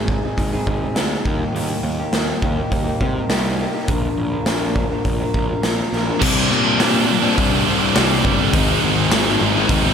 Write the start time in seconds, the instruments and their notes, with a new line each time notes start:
Already playing: picked electric bass G#1, clean electric guitar G#2 D#3
0.08 clean electric guitar G#3 C4 D#4 G#4, kick
0.24 clean electric guitar G#3 C4 D#4 G#4
0.38 picked electric bass G#1, kick, open hi-hat
0.53 clean electric guitar G#3 C4 D#4 G#4
0.67 picked electric bass G#1, clean electric guitar G#3 C4 D#4 G#4, kick
0.82 clean electric guitar G#3 C4 D#4 G#4
0.95 picked electric bass D2, clean electric guitar G#2 D#3 G#3 C4 D#4, snare, open hi-hat
0.99 clean electric guitar G#4
1.25 picked electric bass D#2, clean electric guitar D#3 G3 A#3 D#4 G4, kick
1.40 clean electric guitar A#3 D#4 G4
1.54 picked electric bass D#2, clean electric guitar D#3 G3 A#3 D#4 G4, open hi-hat
1.69 clean electric guitar A#3 D#4 G4
1.83 picked electric bass D#2
1.99 clean electric guitar A#3 D#4 G4
2.12 picked electric bass D#2, clean electric guitar D#3 G3 A#3 D#4 G4, snare, open hi-hat
2.42 picked electric bass D#2, clean electric guitar G3 A#3 D#4 G4, kick
2.56 clean electric guitar A#3 D#4 G4
2.72 picked electric bass D#2, kick, open hi-hat
2.84 clean electric guitar A#3 D#4 G4
3.00 picked electric bass C3, clean electric guitar G3 A#3 D#4 G4, kick
3.15 clean electric guitar A#3 D#4 G4
3.29 picked electric bass C2, clean electric guitar D#3 G3 A#3 D#4 G4, snare, open hi-hat
3.59 clean electric guitar G3 A#3 D#4 G4
3.74 clean electric guitar A#3 D#4 G4
3.88 picked electric bass A#1, clean electric guitar A#2 D3 F3 A#3 D4 A#4, kick, open hi-hat
4.03 clean electric guitar F3 A#3 D4 A#4
4.17 picked electric bass A#1
4.31 clean electric guitar F3 A#3 D4 A#4
4.45 picked electric bass A#1, clean electric guitar A#2 D3 F3 A#3 D4 A#4, snare, open hi-hat
4.75 clean electric guitar F3 A#3 D4 A#4, kick
4.89 clean electric guitar F3 A#3 D4 A#4
5.05 picked electric bass A#1, kick, open hi-hat
5.20 clean electric guitar F3 A#3 D4 A#4
5.34 picked electric bass A#1, clean electric guitar F3 A#3 D4 A#4, kick
5.49 clean electric guitar F3 A#3 D4 A#4
5.62 picked electric bass A#1, clean electric guitar A#2 D3 F3 A#3 D4 A#4, snare, open hi-hat
5.91 picked electric bass A#1, clean electric guitar F3 A#3 D4 A#4, snare
6.06 clean electric guitar F3 A#3 D4 A#4
6.21 picked electric bass C2, distorted electric guitar C3 G3 C4 D4, kick, crash
6.35 distorted electric guitar G3 C4 D4
6.50 picked electric bass A#2, distorted electric guitar C3 G3 C4 D4
6.64 distorted electric guitar G3 C4 D4
6.78 picked electric bass A#2, distorted electric guitar C3 G3 C4 D4, snare, open hi-hat
6.93 distorted electric guitar G3 C4 D4
7.06 distorted electric guitar C3 G3 C4 D4, muted distorted electric guitar stroke
7.22 distorted electric guitar G3 C4 D4
7.38 picked electric bass C2, kick, open hi-hat
7.51 distorted electric guitar G3 C4 D4
7.55 distorted electric guitar G3
7.66 picked electric bass C2, distorted electric guitar C3 G3 C4 D4
7.81 distorted electric guitar G3 C4 D4
7.95 picked electric bass C2, distorted electric guitar C3 G3 C4 D4, snare, open hi-hat
8.10 distorted electric guitar G3 C4 D4
8.25 picked electric bass G1, distorted electric guitar C3 G3 C4 D4, kick
8.37 distorted electric guitar G3 C4 D4
8.53 picked electric bass G#1, distorted electric guitar G#2 D#3 G#3 C4 D#4, kick, open hi-hat
8.67 distorted electric guitar G#3 C4 D#4
8.82 picked electric bass G#1, distorted electric guitar D#3 G#3 C4 D#4
8.95 distorted electric guitar G#3 C4 D#4
9.11 picked electric bass G#1, distorted electric guitar G#2 D#3 G#3 C4 D#4, snare, open hi-hat
9.26 distorted electric guitar G#3 C4 D#4
9.39 picked electric bass G#1, distorted electric guitar D#3 G#3 C4 D#4, muted distorted electric guitar stroke
9.55 distorted electric guitar G#3 C4 D#4
9.69 picked electric bass G#1, kick, open hi-hat
9.84 distorted electric guitar G#3 C4 D#4